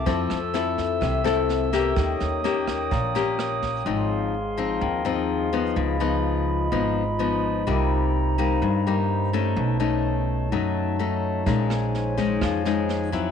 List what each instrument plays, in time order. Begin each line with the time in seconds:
0.06 upright bass F2, nylon-string guitar F3 C4 E4 A4, glass harmonica A4 E5 E6, kick, snare
0.30 upright bass F2, cross-stick, snare
0.54 nylon-string guitar C4 E4 A4, snare
0.78 kick, snare
1.01 upright bass C2, nylon-string guitar C3, kick, cross-stick, snare
1.24 nylon-string guitar C4 E4 A4, snare
1.49 snare
1.73 nylon-string guitar A#3 C#4 G4, kick, snare
1.96 upright bass D#2, nylon-string guitar D#3, glass harmonica C#5 G5 D#6, kick, cross-stick, snare
2.20 upright bass D#2, snare
2.44 nylon-string guitar A#3 C#4 G4, snare
2.67 kick, cross-stick, snare
2.91 upright bass A#1, nylon-string guitar A#2, kick, snare
3.15 nylon-string guitar A#3 C#4 G4, snare
3.39 cross-stick, snare
3.62 kick, snare
3.85 upright bass G#1, nylon-string guitar G#2 F3 C4 D#4, glass harmonica G#4 F5 C6
4.58 nylon-string guitar F3 C4 D#4
4.81 upright bass D#2, nylon-string guitar D#3
5.05 nylon-string guitar F3 C4 D#4
5.53 nylon-string guitar F3 B3 D#4
5.76 upright bass C#2, nylon-string guitar C#3, glass harmonica F4 D#5 B5
6.00 nylon-string guitar F3 B3 D#4
6.72 upright bass G#1, nylon-string guitar G#2 F3 B3 D#4
7.19 nylon-string guitar F3 B3 D#4
7.67 upright bass C2, nylon-string guitar C3 G3 A#3 D#4, glass harmonica D#4 C5 A#5
8.38 nylon-string guitar G3 A#3 D#4
8.62 upright bass G2, nylon-string guitar G2
8.87 nylon-string guitar G3 A#3 D#4
9.33 nylon-string guitar A3 C#4 D#4
9.57 upright bass B1, nylon-string guitar B2, glass harmonica C#5 A5
9.80 nylon-string guitar A3 C#4 D#4
10.52 upright bass F#2, nylon-string guitar F#3 A3 C#4 D#4
10.99 nylon-string guitar A3 C#4 D#4
11.46 upright bass A#1, nylon-string guitar A#2 G#3 C#4 D#4, glass harmonica C5 C#5 G#5, kick, snare
11.70 cross-stick, snare
11.95 snare
12.18 nylon-string guitar G#3 C#4 D#4, kick, snare
12.41 upright bass F2, nylon-string guitar F3, kick, cross-stick, snare
12.65 nylon-string guitar G#3 C#4 D#4, snare
12.89 snare
13.12 nylon-string guitar F#3 C4 E4, kick, snare